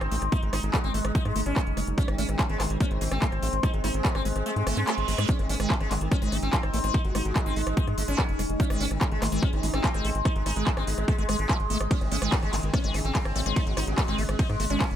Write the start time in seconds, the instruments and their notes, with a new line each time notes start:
Already playing: ambient pad G#3 D#4, sitar C4
0.01 analog synth bass G#1, cross-stick, closed hi-hat
0.12 analog synth bass A1, acid bass A3, open hi-hat
0.22 analog synth bass G#1, cross-stick, closed hi-hat
0.32 acid bass A3, sitar D#4, kick, closed hi-hat
0.42 analog synth bass G#1, sitar G#3, closed hi-hat
0.53 analog synth bass G#1, acid bass G#3, sitar D#4, cross-stick, open hi-hat
0.63 analog synth bass G#1, sitar G#3, closed hi-hat
0.74 sitar G#3, acid bass A3, kick, cross-stick, clap, closed hi-hat
0.84 analog synth bass G#1, sitar C4, closed hi-hat
0.94 analog synth bass G#1, sitar G#3, acid bass A3, open hi-hat
1.05 analog synth bass G#1, sitar G#3, cross-stick, closed hi-hat
1.15 acid bass G#3, sitar D#4, kick, closed hi-hat
1.25 analog synth bass G#2, sitar G#3, cross-stick, closed hi-hat
1.36 analog synth bass G#1, sitar G#3, acid bass A3, open hi-hat
1.46 analog synth bass G#1, sitar C#4, closed hi-hat
1.56 acid bass A3, kick, cross-stick, clap, closed hi-hat
1.67 analog synth bass F#1, closed hi-hat
1.77 analog synth bass F#1, acid bass G#3, cross-stick, open hi-hat
1.87 analog synth bass F#1, closed hi-hat
1.98 acid bass A3, ambient pad C4, sitar C#4, kick, closed hi-hat
2.08 analog synth bass G#1, sitar D#3, cross-stick, closed hi-hat
2.18 analog synth bass G#1, acid bass A3, sitar C#4, open hi-hat
2.29 analog synth bass G#1, sitar D#3, cross-stick, closed hi-hat
2.39 sitar D#3, acid bass G#3, kick, clap, closed hi-hat
2.49 analog synth bass G#1, sitar G#3, closed hi-hat
2.60 analog synth bass G#1, sitar D#3, acid bass A3, cross-stick, clap, open hi-hat
2.70 analog synth bass G#1, sitar D#3, closed hi-hat
2.80 acid bass A3, sitar C#4, kick, cross-stick, closed hi-hat
2.91 analog synth bass G#1, sitar D#3, closed hi-hat
3.01 analog synth bass G#1, sitar D#3, acid bass G#3, open hi-hat
3.11 analog synth bass G#1, sitar C4, cross-stick, closed hi-hat
3.22 acid bass A3, kick, clap, closed hi-hat
3.32 analog synth bass G#1, cross-stick, closed hi-hat
3.42 analog synth bass A1, acid bass A3, open hi-hat
3.53 analog synth bass G#1, closed hi-hat
3.63 acid bass G#3, sitar D#4, kick, cross-stick, closed hi-hat
3.74 analog synth bass G#1, sitar G#3, closed hi-hat
3.84 analog synth bass G#1, acid bass A3, sitar D#4, cross-stick, open hi-hat
3.94 analog synth bass G#1, sitar G#3, closed hi-hat
4.05 sitar G#3, acid bass A3, kick, clap, closed hi-hat
4.15 analog synth bass G#1, sitar C4, cross-stick, closed hi-hat
4.25 analog synth bass G#1, sitar G#3, acid bass G#3, open hi-hat
4.36 analog synth bass G#1, sitar G#3, cross-stick, closed hi-hat
4.46 sitar G#3, acid bass A3, closed hi-hat, reverse cymbal
4.56 analog synth bass G#2, sitar G#3, closed hi-hat
4.67 analog synth bass G#1, sitar G#3, acid bass A3, cross-stick, open hi-hat
4.77 analog synth bass G#2, sitar G#3, acid bass D#4, closed hi-hat
4.87 acid bass A3, cross-stick, clap, closed hi-hat
4.98 analog synth bass G#1, closed hi-hat
5.08 analog synth bass G#1, acid bass G#3, open hi-hat
5.18 analog synth bass G#2, acid bass G#3, cross-stick, closed hi-hat
5.29 ambient pad G#3 D#4, acid bass G#3, sitar C#4, kick, cross-stick, closed hi-hat
5.39 analog synth bass G#1, sitar D#3, wobble bass C4, closed hi-hat
5.49 analog synth bass G#1, acid bass A3, wobble bass C4, sitar C#4, open hi-hat
5.60 analog synth bass G#1, sitar D#3, acid bass G#3, cross-stick, closed hi-hat
5.70 sitar D#3, acid bass A3, kick, clap, closed hi-hat
5.80 analog synth bass G#1, sitar G#3, cross-stick, closed hi-hat
5.91 analog synth bass G#1, sitar D#3, acid bass G#3, clap, open hi-hat
6.01 analog synth bass G#1, sitar D#3, closed hi-hat
6.11 acid bass A3, wobble bass C4, sitar C#4, kick, cross-stick, closed hi-hat
6.22 analog synth bass G#1, sitar D#3, acid bass G#3, wobble bass C4, closed hi-hat
6.32 analog synth bass G#1, sitar D#3, acid bass A3, cross-stick, open hi-hat
6.42 analog synth bass G#1, sitar C4, closed hi-hat
6.53 acid bass G#3, kick, clap, closed hi-hat
6.63 analog synth bass G#1, cross-stick, closed hi-hat
6.74 analog synth bass A1, acid bass A3, wobble bass C4, open hi-hat
6.84 analog synth bass G#1, acid bass G#3, wobble bass C4, cross-stick, closed hi-hat
6.94 acid bass A3, sitar D#4, kick, closed hi-hat
7.05 analog synth bass G#1, sitar G#3, wobble bass F#4, closed hi-hat
7.15 analog synth bass G#1, acid bass G#3, sitar D#4, cross-stick, open hi-hat
7.25 analog synth bass G#1, sitar G#3, closed hi-hat
7.36 sitar G#3, acid bass A3, kick, cross-stick, clap, closed hi-hat
7.46 analog synth bass G#1, acid bass G#3, sitar C4, closed hi-hat
7.56 analog synth bass G#1, sitar G#3, acid bass A3, open hi-hat
7.67 analog synth bass G#1, sitar G#3, cross-stick, closed hi-hat
7.77 acid bass G#3, sitar D#4, kick, closed hi-hat
7.87 analog synth bass G#2, sitar G#3, cross-stick, closed hi-hat
7.98 analog synth bass G#1, sitar G#3, acid bass A3, open hi-hat
8.08 analog synth bass G#1, acid bass G#3, sitar C#4, closed hi-hat
8.18 acid bass A3, kick, cross-stick, clap, closed hi-hat
8.29 analog synth bass F#1, closed hi-hat
8.39 analog synth bass F#1, acid bass G#3, cross-stick, open hi-hat
8.49 analog synth bass F#1, closed hi-hat
8.60 acid bass A3, sitar C#4, kick, closed hi-hat
8.70 analog synth bass G#1, sitar D#3, acid bass G#3, wobble bass C4, cross-stick, closed hi-hat
8.80 analog synth bass G#1, acid bass A3, wobble bass C4, sitar C#4, open hi-hat
8.91 analog synth bass G#1, sitar D#3, cross-stick, closed hi-hat
9.01 sitar D#3, acid bass G#3, kick, clap, closed hi-hat
9.11 analog synth bass G#1, sitar G#3, closed hi-hat
9.22 analog synth bass G#1, sitar D#3, acid bass A3, cross-stick, clap, open hi-hat
9.32 analog synth bass G#1, sitar D#3, acid bass G#3, closed hi-hat
9.42 acid bass A3, wobble bass C4, sitar C#4, kick, cross-stick, closed hi-hat
9.53 analog synth bass G#1, sitar D#3, wobble bass C4, closed hi-hat
9.63 analog synth bass G#1, sitar D#3, acid bass G#3, wobble bass D#4, open hi-hat
9.74 analog synth bass G#1, sitar C4, wobble bass D#4, cross-stick, closed hi-hat
9.84 acid bass A3, kick, clap, closed hi-hat
9.94 analog synth bass G#1, wobble bass G#3, acid bass G#3, cross-stick, closed hi-hat
10.05 analog synth bass A1, wobble bass G#3, acid bass A3, open hi-hat
10.15 analog synth bass G#1, closed hi-hat
10.25 acid bass G#3, sitar D#4, kick, cross-stick, closed hi-hat
10.36 analog synth bass G#1, sitar G#3, closed hi-hat
10.46 analog synth bass G#1, acid bass A3, sitar D#4, cross-stick, open hi-hat
10.56 analog synth bass G#1, sitar G#3, acid bass G#3, closed hi-hat
10.67 sitar G#3, acid bass A3, kick, clap, closed hi-hat
10.77 analog synth bass G#1, wobble bass G#3, sitar C4, cross-stick, closed hi-hat
10.87 analog synth bass G#1, sitar G#3, acid bass G#3, open hi-hat
10.98 analog synth bass G#1, sitar G#3, cross-stick, closed hi-hat
11.08 sitar G#3, acid bass A3, kick, closed hi-hat
11.18 analog synth bass G#1, acid bass G#3, sitar G#3, closed hi-hat
11.29 analog synth bass G#1, acid bass G#3, sitar G#3, cross-stick, open hi-hat
11.39 analog synth bass G#1, sitar G#3, closed hi-hat
11.49 acid bass G#3, kick, cross-stick, clap, closed hi-hat
11.60 analog synth bass G#1, closed hi-hat
11.70 analog synth bass G#1, acid bass A3, open hi-hat
11.80 analog synth bass G#1, cross-stick, closed hi-hat
11.91 ambient pad C#3, acid bass G#3, sitar C#4, kick, cross-stick, closed hi-hat, ride
12.01 analog synth bass G#1, sitar D#3, wobble bass C4, closed hi-hat
12.11 analog synth bass G#1, acid bass A3, wobble bass C4, sitar C#4, open hi-hat
12.22 analog synth bass G#1, sitar D#3, acid bass G#3, cross-stick, closed hi-hat
12.32 sitar D#3, acid bass A3, kick, clap, closed hi-hat, ride
12.43 analog synth bass G#1, sitar G#3, cross-stick, closed hi-hat
12.53 analog synth bass G#1, sitar D#3, acid bass G#3, clap, open hi-hat
12.63 analog synth bass G#1, sitar D#3, closed hi-hat
12.74 acid bass A3, wobble bass C4, sitar C#4, kick, cross-stick, closed hi-hat, ride
12.84 analog synth bass G#1, sitar D#3, acid bass G#3, wobble bass C4, closed hi-hat
12.94 analog synth bass G#1, sitar D#3, acid bass A3, cross-stick, open hi-hat
13.05 analog synth bass G#1, sitar C4, closed hi-hat
13.15 acid bass G#3, kick, clap, closed hi-hat, ride
13.25 analog synth bass G#1, cross-stick, closed hi-hat
13.36 analog synth bass A1, acid bass A3, wobble bass C4, open hi-hat
13.46 analog synth bass G#1, acid bass G#3, wobble bass C4, cross-stick, closed hi-hat
13.56 acid bass A3, sitar D#4, kick, closed hi-hat, ride
13.67 analog synth bass G#1, sitar G#3, wobble bass F#4, closed hi-hat
13.77 analog synth bass G#1, acid bass G#3, sitar D#4, cross-stick, open hi-hat
13.87 analog synth bass G#1, sitar G#3, closed hi-hat
13.98 sitar G#3, acid bass A3, kick, cross-stick, clap, closed hi-hat, ride
14.08 analog synth bass G#1, acid bass G#3, sitar C4, closed hi-hat
14.18 analog synth bass G#1, sitar G#3, acid bass A3, open hi-hat
14.29 analog synth bass G#1, sitar G#3, cross-stick, closed hi-hat
14.39 acid bass G#3, sitar D#4, kick, closed hi-hat, ride
14.49 analog synth bass G#2, sitar G#3, cross-stick, closed hi-hat
14.60 analog synth bass G#1, sitar G#3, acid bass A3, open hi-hat
14.70 analog synth bass G#1, acid bass G#3, sitar C#4, closed hi-hat
14.80 acid bass A3, kick, cross-stick, clap, closed hi-hat, ride
14.91 analog synth bass F#1, closed hi-hat